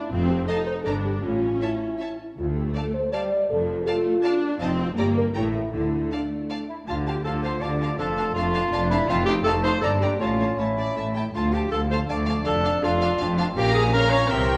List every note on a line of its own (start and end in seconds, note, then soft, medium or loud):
0.00 0.11 D4 medium
0.00 0.12 E4 medium
0.12 0.43 F1 medium
0.12 0.43 F2 medium
0.12 0.48 C4 medium
0.12 0.31 F4 medium
0.30 0.49 G4 medium
0.48 0.86 D#4 medium
0.48 0.67 A4 medium
0.48 0.56 D#5 medium
0.48 0.56 F5 medium
0.48 0.58 A5 medium
0.66 0.75 C5 medium
0.84 1.18 G1 medium
0.84 1.18 G2 medium
0.84 1.24 D4 medium
0.84 0.93 A4 loud
0.84 0.94 D5 medium
0.84 0.94 A#5 medium
1.03 1.12 G4 medium
1.24 1.57 A1 medium
1.24 1.57 A2 medium
1.24 2.20 C#4 medium
1.24 1.62 F4 medium
1.62 2.19 E4 medium
1.62 1.70 C#5 soft
1.62 1.70 E5 soft
1.62 1.70 A5 soft
2.00 2.08 C#5 soft
2.00 2.08 E5 soft
2.00 2.09 A5 soft
2.20 2.28 E4 medium
2.38 2.69 D2 medium
2.38 2.70 D2 medium
2.38 3.09 A3 medium
2.38 2.47 F4 medium
2.56 2.64 G4 medium
2.75 2.93 A4 medium
2.75 2.83 D5 medium
2.75 2.84 F5 medium
2.75 2.84 A5 soft
2.94 3.12 C5 medium
3.12 3.49 G3 medium
3.12 3.50 D5 medium
3.12 3.21 D5 medium
3.12 3.21 F5 medium
3.12 3.20 A5 medium
3.49 3.81 F1 medium
3.49 3.81 F2 medium
3.49 3.87 F3 medium
3.49 3.86 A4 medium
3.86 4.24 A3 medium
3.86 4.43 F4 medium
3.86 3.95 D5 medium
3.86 3.96 F5 medium
3.86 3.94 A5 medium
4.23 4.60 D4 medium
4.23 4.32 D5 medium
4.23 4.32 F5 medium
4.23 4.31 A5 medium
4.43 4.61 D4 medium
4.61 4.91 F1 medium
4.61 4.92 F2 medium
4.61 4.97 C4 medium
4.61 4.70 D#4 loud
4.61 4.70 D#5 medium
4.61 4.69 F5 medium
4.61 4.69 A5 medium
4.81 4.89 F4 medium
4.97 5.29 G1 medium
4.97 5.29 G2 medium
4.97 5.34 A#3 medium
4.97 5.16 G4 medium
4.97 5.07 D5 medium
4.97 5.05 A#5 medium
5.17 5.25 A#4 loud
5.34 5.67 A1 medium
5.34 5.67 A2 medium
5.34 5.72 A3 medium
5.34 5.72 E4 medium
5.34 5.44 C#5 medium
5.34 5.44 G5 soft
5.34 5.43 A#5 medium
5.73 6.05 D2 medium
5.73 6.06 D3 medium
5.73 6.67 A3 medium
5.73 6.11 E4 medium
6.12 6.70 D4 medium
6.12 6.21 D5 soft
6.12 6.20 F5 soft
6.12 6.20 A5 soft
6.50 6.58 D5 soft
6.50 6.59 F5 soft
6.50 6.59 A5 soft
6.68 6.78 E4 medium
6.68 6.74 E5 soft
6.88 7.21 D2 medium
6.88 7.22 D3 medium
6.88 9.05 A3 medium
6.88 6.96 F4 medium
6.88 7.96 F4 medium
6.88 6.97 F4 medium
6.88 6.96 F5 soft
6.88 6.95 F5 medium
6.88 6.95 A5 soft
7.06 7.14 F4 soft
7.06 7.24 G4 medium
7.06 7.15 F5 soft
7.06 7.14 G5 medium
7.06 7.14 A5 soft
7.24 7.59 D2 medium
7.24 7.59 D3 medium
7.24 7.64 F3 medium
7.24 7.33 F4 medium
7.24 7.43 A4 medium
7.24 7.33 F5 medium
7.24 7.32 A5 soft
7.24 7.45 A5 medium
7.43 7.52 F4 soft
7.43 7.63 C5 medium
7.43 7.52 F5 soft
7.43 7.51 A5 soft
7.43 7.64 C6 medium
7.61 7.95 D2 medium
7.61 7.95 D3 medium
7.61 7.98 G3 medium
7.61 7.70 F4 soft
7.61 7.98 D5 medium
7.61 7.70 F5 medium
7.61 7.69 A5 soft
7.61 7.98 D6 medium
7.80 7.88 F4 medium
7.80 7.89 F5 medium
7.80 7.89 A5 soft
7.99 8.32 F1 medium
7.99 8.32 F2 medium
7.99 8.35 F3 medium
7.99 8.06 D4 medium
7.99 9.09 D4 medium
7.99 8.34 A4 medium
7.99 8.07 F5 medium
7.99 8.06 A5 medium
7.99 8.35 A5 medium
8.17 8.24 D4 medium
8.17 8.26 F5 medium
8.17 8.25 A5 medium
8.34 8.68 F1 medium
8.34 8.68 F2 medium
8.34 8.71 A3 medium
8.34 8.43 D4 medium
8.34 8.89 F4 loud
8.34 8.89 F5 medium
8.34 8.44 F5 medium
8.34 8.44 A5 medium
8.54 8.61 D4 medium
8.54 8.62 F5 medium
8.54 8.62 A5 medium
8.72 9.04 F1 medium
8.72 9.05 F2 medium
8.72 9.11 D4 medium
8.72 8.80 D4 medium
8.72 8.80 F5 medium
8.72 8.80 A5 medium
8.90 8.98 D4 medium
8.90 9.10 E4 medium
8.90 9.12 E5 medium
8.90 8.99 F5 medium
8.90 8.98 A5 medium
9.08 9.41 F1 medium
9.08 9.41 F2 medium
9.08 9.81 A3 medium
9.08 9.45 C4 medium
9.08 9.16 D#4 medium
9.08 9.82 D#4 medium
9.08 9.25 F4 loud
9.08 9.17 F5 medium
9.08 9.27 F5 medium
9.08 9.17 A5 medium
9.26 9.35 D#4 medium
9.26 9.34 G4 loud
9.26 9.35 F5 medium
9.26 9.45 G5 medium
9.26 9.36 A5 medium
9.44 9.78 F1 medium
9.44 9.79 F2 medium
9.44 9.82 A3 medium
9.44 9.53 D#4 medium
9.44 9.53 A4 loud
9.44 9.54 F5 medium
9.44 9.53 A5 medium
9.44 9.66 A5 medium
9.63 9.71 D#4 medium
9.63 9.80 C5 loud
9.63 9.72 F5 medium
9.63 9.72 A5 medium
9.63 9.85 C6 medium
9.81 10.16 G1 medium
9.81 10.17 G2 medium
9.81 10.21 A#3 medium
9.81 10.20 D4 medium
9.81 9.90 D4 medium
9.81 9.90 A4 medium
9.81 9.91 D5 medium
9.81 10.04 A5 medium
9.81 9.90 A#5 medium
10.00 10.09 D4 medium
10.00 10.20 G4 medium
10.00 10.09 D5 medium
10.00 10.21 G5 medium
10.00 10.10 A#5 medium
10.20 10.55 A1 medium
10.20 10.55 A2 medium
10.20 11.16 A3 medium
10.20 10.29 A3 medium
10.20 11.14 C#4 medium
10.20 10.60 F4 medium
10.20 10.28 C#5 medium
10.20 10.59 F5 medium
10.20 10.30 A5 medium
10.40 10.48 A3 soft
10.40 10.47 C#5 soft
10.40 10.49 A5 soft
10.59 10.93 A1 medium
10.59 10.93 A2 medium
10.59 10.66 A3 soft
10.59 11.15 E4 medium
10.59 10.66 C#5 medium
10.59 11.16 E5 medium
10.59 10.67 A5 soft
10.77 10.85 A3 soft
10.77 10.96 D5 medium
10.77 10.86 A5 soft
10.97 11.31 A1 medium
10.97 11.31 A2 medium
10.97 11.04 A3 soft
10.97 11.05 E5 medium
10.97 11.05 A5 soft
11.15 11.23 A3 soft
11.15 11.24 E4 medium
11.15 11.24 E5 medium
11.15 11.24 G5 medium
11.15 11.24 A5 soft
11.35 11.68 D2 medium
11.35 11.69 D2 medium
11.35 13.54 F3 medium
11.35 11.42 A3 medium
11.35 13.54 D4 medium
11.35 11.55 F4 medium
11.35 11.43 F5 medium
11.35 11.56 F5 medium
11.35 11.44 A5 medium
11.52 11.60 A3 medium
11.52 11.71 G4 medium
11.52 11.62 F5 medium
11.52 11.73 G5 medium
11.52 11.62 A5 soft
11.71 12.06 D2 medium
11.71 11.79 A3 medium
11.71 12.08 F4 medium
11.71 11.81 A4 loud
11.71 11.79 F5 medium
11.71 11.81 A5 medium
11.71 11.80 A5 medium
11.90 11.98 A3 medium
11.90 11.99 C5 medium
11.90 11.99 F5 medium
11.90 11.99 A5 medium
11.90 11.98 C6 medium
12.09 12.43 D2 medium
12.09 12.16 A3 medium
12.09 12.46 A3 medium
12.09 12.46 D5 medium
12.09 12.17 F5 medium
12.09 12.17 A5 medium
12.09 12.44 D6 medium
12.27 12.35 A3 medium
12.27 12.35 F5 medium
12.27 12.37 A5 medium
12.45 12.79 F1 medium
12.45 12.80 F2 medium
12.45 12.53 D4 medium
12.45 13.23 D4 medium
12.45 12.85 A4 loud
12.45 12.53 F5 medium
12.45 12.82 A5 medium
12.45 12.54 A5 medium
12.64 12.72 D4 medium
12.64 12.72 F5 medium
12.64 12.73 A5 soft
12.82 13.17 F1 medium
12.82 13.17 F2 medium
12.82 12.91 D4 medium
12.82 13.38 F4 medium
12.82 13.13 F5 medium
12.82 12.91 F5 medium
12.82 12.91 A5 medium
13.01 13.09 D4 medium
13.01 13.09 F5 medium
13.01 13.10 A5 medium
13.20 13.53 F1 medium
13.20 13.53 F2 medium
13.20 13.57 C4 medium
13.20 13.27 D4 medium
13.20 13.27 F5 medium
13.20 13.29 A5 medium
13.38 13.46 D4 medium
13.38 13.47 F4 medium
13.38 13.46 F5 medium
13.38 13.44 F5 medium
13.38 13.47 A5 medium
13.56 14.27 A#1 medium
13.56 14.27 A#2 medium
13.56 13.91 F3 medium
13.56 13.95 A#3 medium
13.56 13.91 C#4 medium
13.56 13.74 G4 loud
13.56 13.91 F5 medium
13.56 13.75 G5 loud
13.56 13.91 A#5 medium
13.74 13.83 G#4 loud
13.74 13.95 G#5 medium
13.93 14.30 F3 medium
13.93 14.30 C#4 medium
13.93 14.29 C#4 medium
13.93 14.11 A#4 loud
13.93 14.29 F5 medium
13.93 14.14 A#5 medium
13.93 14.30 A#5 medium
14.10 14.29 C#5 loud
14.10 14.30 C#6 medium
14.28 14.57 C2 medium
14.28 14.57 C3 medium
14.28 14.57 E3 medium
14.28 14.57 C4 medium
14.28 14.57 A#4 loud
14.28 14.57 E5 medium
14.28 14.57 G5 medium
14.28 14.37 A#5 medium